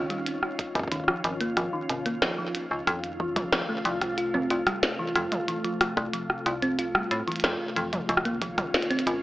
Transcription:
Already playing: D#3 C#4 F4
0.10 G3, closed hi-hat
0.26 closed hi-hat
0.43 cross-stick
0.59 kick, closed hi-hat
0.75 G#1, kick, closed hi-hat
0.79 kick
0.83 kick
0.88 kick
0.92 D#3, kick, closed hi-hat
0.96 kick
1.00 kick
1.04 kick
1.08 F3, cross-stick
1.24 G#1 F3, closed hi-hat
1.41 A#3, closed hi-hat
1.57 G#1 F3, cross-stick, closed hi-hat
1.73 D#3
1.89 G#1 C3, closed hi-hat
2.06 A#3, closed hi-hat
2.22 F3, cross-stick, snare, closed hi-hat
2.38 F3
2.55 closed hi-hat
2.71 C#2
2.87 F2 C3 A3, kick, cross-stick, closed hi-hat
3.04 closed hi-hat
3.20 E3, kick
3.36 C2 F3, kick, closed hi-hat, mid tom
3.52 F3, cross-stick, snare, closed hi-hat
3.69 A3
3.85 C2 F3, closed hi-hat
4.02 cross-stick, closed hi-hat
4.18 F4, closed hi-hat
4.34 C4, mid tom
4.50 C2 F4, closed hi-hat
4.67 G3, cross-stick, closed hi-hat
4.83 snare, closed hi-hat
4.99 E3
5.16 F2, cross-stick, closed hi-hat
5.32 closed hi-hat, mid tom
5.48 E3, closed hi-hat
5.64 F3, closed hi-hat
5.81 F3, cross-stick, closed hi-hat
5.97 C2 A3, kick, closed hi-hat
6.13 F3, closed hi-hat
6.30 cross-stick
6.46 C2 F4, closed hi-hat
6.62 C4, closed hi-hat
6.79 F4, closed hi-hat
6.95 G3, cross-stick
7.11 A2, closed hi-hat
7.27 E3, closed hi-hat
7.32 closed hi-hat
7.36 closed hi-hat
7.40 closed hi-hat
7.44 F2, cross-stick, snare, closed hi-hat
7.76 F2 E3, closed hi-hat
7.93 F3, closed hi-hat, mid tom
8.09 C#2 D#3 F3 C#4 F4, kick, closed hi-hat
8.17 cross-stick
8.25 A#3, closed hi-hat
8.42 F3, kick, closed hi-hat
8.58 G#1, kick, cross-stick, closed hi-hat, mid tom
8.74 F4, snare, closed hi-hat
8.82 closed hi-hat
8.90 C4, closed hi-hat
8.99 closed hi-hat
9.07 G#1 F4, closed hi-hat

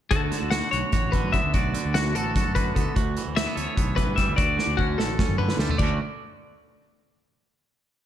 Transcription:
0.11 D2 F#4 A4, kick, closed hi-hat
0.31 D3, snare, closed hi-hat
0.42 D2
0.51 F#4 F#5, snare, closed hi-hat
0.71 B1 F#4 C#5, closed hi-hat
0.92 A1 F#4, kick, snare, closed hi-hat
1.12 D3 B4, kick, closed hi-hat
1.24 F#2
1.32 B3 E5, kick, closed hi-hat
1.44 D2
1.54 B1 D2 F#4 D5, kick, closed hi-hat
1.74 D3, closed hi-hat
1.85 D2
1.94 F#4, snare, closed hi-hat
2.15 A1 F#4 A4, closed hi-hat
2.36 F#2 F#4, kick, snare, closed hi-hat
2.47 F#2
2.55 D3 B4, kick, closed hi-hat
2.75 D2 B3 A4, kick, closed hi-hat
2.95 D2 F#4, kick, closed hi-hat
3.17 E3, closed hi-hat
3.27 D2
3.36 A3 E5, snare, closed hi-hat
3.46 B3
3.55 D2 A4 C#5, closed hi-hat
3.76 B1 B3, kick, closed hi-hat
3.96 E3 B4, kick, closed hi-hat
4.07 G2
4.16 G3 E5, kick, snare, closed hi-hat
4.28 D2
4.36 D2 F#4 D5, kick, closed hi-hat
4.57 D3, snare
4.67 D2
4.77 C#4 F#4, kick
4.97 A1 A4, snare
5.19 F#2 C#4, kick, snare
5.27 F#2, mid tom
5.38 D3 B4, mid tom
5.49 snare
5.58 D2 G3 A4, snare
5.70 A3, floor tom
5.78 D2 D3 A3 D5, kick, crash
5.83 C#4 F#4

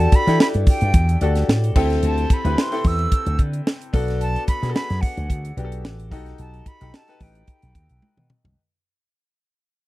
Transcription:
Already playing: D4 F#4 G4 A4 A5
0.00 closed hi-hat
0.12 B5, kick, closed hi-hat
0.27 E3 D4 E4 G4 A4, snare, closed hi-hat
0.40 B5, snare
0.54 G2, closed hi-hat
0.67 G5, kick, open hi-hat
0.81 G2, closed hi-hat
0.94 E2, kick, closed hi-hat
1.09 closed hi-hat
1.21 D2 D4 F#4 G4 A4, closed hi-hat
1.35 snare, closed hi-hat
1.49 A2, snare
1.64 closed hi-hat
1.76 D2 C4 E4 G4 A4, kick, crash
1.90 snare, closed hi-hat
2.03 D2 A5, closed hi-hat
2.18 closed hi-hat
2.30 B5, kick, closed hi-hat
2.45 D2 C4 E4 G4 B4, closed hi-hat
2.58 C6, snare
2.71 C4 E4 G4 A4, snare, closed hi-hat
2.84 E2 E6, kick, open hi-hat
2.99 closed hi-hat
3.12 kick, closed hi-hat
3.26 D2, closed hi-hat
3.39 D3, kick, closed hi-hat
3.53 closed hi-hat
3.67 snare
3.81 closed hi-hat
3.93 B1 B3 D4 F#4 A4, kick, open hi-hat
4.08 snare, closed hi-hat
4.21 A5, closed hi-hat
4.36 closed hi-hat
4.48 B5, kick, closed hi-hat
4.62 B2 B3 D4 F#4 G#4, snare, closed hi-hat
4.70 A4
4.75 B5, snare
4.90 F#2, snare, closed hi-hat
5.01 F#5, kick, open hi-hat
5.17 D2, closed hi-hat
5.30 D2, kick, closed hi-hat
5.45 closed hi-hat
5.57 B1 B3 D4 F#4 G4, closed hi-hat
5.65 A4
5.72 closed hi-hat
5.83 A1, snare
6.00 closed hi-hat
6.11 B1 D#4 F#4 G4 A4, kick, open hi-hat
6.26 snare, closed hi-hat
6.38 B1 A5, closed hi-hat
6.54 closed hi-hat
6.66 B5, kick, closed hi-hat
6.81 B1 D#4 F#4 G4 A4, closed hi-hat
6.94 A5, snare
7.08 D#4 G4 A4 B4, snare, closed hi-hat
7.20 A1 G5, kick, open hi-hat
7.35 closed hi-hat
7.47 kick, closed hi-hat
7.62 B1, closed hi-hat
7.75 D#2, kick, closed hi-hat
7.89 B1, closed hi-hat
8.02 high tom
8.17 B2, mid tom
8.30 mid tom
8.44 C2, floor tom

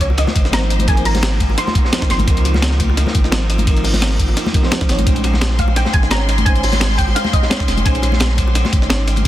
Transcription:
Already playing: C#2 F3 A#3 C4 D#4 F4 A#4 C5
0.00 C#5, kick, closed hi-hat, ride
0.10 high bongo
0.18 D#5, snare, closed hi-hat, ride
0.27 snare, high conga
0.36 G#1, kick, closed hi-hat, ride
0.45 snare
0.52 F3 C4 D#4 C5 A#5, snare, closed hi-hat, ride, high conga
0.70 snare, closed hi-hat, ride
0.79 closed hi-hat, high conga
0.85 F3 C4 D#4 G#5, kick, closed hi-hat, ride
0.91 A#4
0.97 closed hi-hat, ride
1.05 A#5, closed hi-hat, open hi-hat, high bongo
1.15 snare, closed hi-hat, high conga
1.23 snare, closed hi-hat, ride
1.40 kick, closed hi-hat, ride, high conga
1.50 high bongo
1.58 C6, snare, closed hi-hat, ride
1.67 snare, high conga
1.75 kick, closed hi-hat, ride
1.85 snare
1.91 F3 C4 D#4 C5, snare, closed hi-hat, ride, high conga
2.02 kick, snare
2.10 G#1 C6, snare, closed hi-hat, ride
2.19 closed hi-hat, high conga
2.25 C#2 F3 C4, kick, closed hi-hat, ride
2.29 D#4 A#4
2.37 closed hi-hat, ride
2.45 closed hi-hat, ride, high bongo
2.54 snare, high conga
2.62 snare, closed hi-hat, ride
2.71 snare
2.80 kick, closed hi-hat, ride, high conga
2.89 high bongo
2.97 snare, closed hi-hat, ride
3.07 snare, high conga
3.15 G#1, kick, closed hi-hat, ride
3.24 snare
3.31 F3 C4 D#4 C5, snare, closed hi-hat, ride, high conga
3.50 snare, closed hi-hat, ride
3.58 closed hi-hat, high conga
3.64 F3 C4 D#4, kick, closed hi-hat, ride
3.70 A#4
3.77 closed hi-hat, ride
3.84 closed hi-hat, open hi-hat, high bongo
3.94 snare, closed hi-hat, high conga
4.02 snare, closed hi-hat, ride
4.19 kick, closed hi-hat, ride
4.29 high bongo
4.37 snare, closed hi-hat, ride
4.46 snare, high conga
4.53 F3 C4 D#4 A#4, kick, closed hi-hat, ride
4.62 F3 C4 D#4 C5, snare
4.71 snare, closed hi-hat, ride, high conga
4.81 kick, snare
4.88 G#1 F3 C4 D#4 C#5, snare, closed hi-hat, ride
4.99 closed hi-hat, high conga
5.03 A#1 G#3 C#4 D#4 C6, kick, closed hi-hat, ride
5.09 C5
5.16 closed hi-hat, ride
5.24 closed hi-hat, ride, high bongo
5.34 snare, high conga
5.41 snare, closed hi-hat, ride
5.51 snare
5.58 F5, kick, closed hi-hat, ride, high conga
5.68 high bongo
5.76 G5, snare, closed hi-hat, ride
5.85 snare, high conga
5.93 G#1 G#5, kick, closed hi-hat, ride
6.03 snare
6.10 G#3 C#4 D#4 C#5 A#5, snare, closed hi-hat, ride, high conga
6.29 snare, closed hi-hat, ride
6.38 closed hi-hat, high conga
6.43 G#3 C#4 D#4 G#5, kick, closed hi-hat, ride
6.49 C5
6.55 closed hi-hat, ride
6.63 closed hi-hat, open hi-hat, high bongo
6.72 snare, closed hi-hat, high conga
6.80 snare, closed hi-hat, ride
6.98 G5, kick, closed hi-hat, ride
7.08 high bongo
7.15 F5, snare, closed hi-hat, ride
7.25 snare, high conga
7.33 D#5, kick, closed hi-hat, ride
7.42 snare
7.49 G#3 C#4 D#4 C#5, snare, closed hi-hat, ride, high conga
7.60 kick, snare
7.68 F1, snare, closed hi-hat, ride
7.77 closed hi-hat, high conga
7.83 A#1 G#3 C#4 D#4 G#5, kick, closed hi-hat, ride
7.89 C5
7.95 closed hi-hat, ride
8.02 closed hi-hat, ride, high bongo
8.12 snare, high conga
8.20 snare, closed hi-hat, ride
8.30 snare
8.38 kick, closed hi-hat, ride
8.48 high bongo
8.55 snare, closed hi-hat, ride
8.65 snare, high conga
8.72 G#1, kick, closed hi-hat, ride
8.82 snare
8.89 G#3 C#4 D#4 C#5, snare, closed hi-hat, ride, high conga
9.07 snare, closed hi-hat, ride
9.16 closed hi-hat, ride, high conga
9.22 G#3 C#4

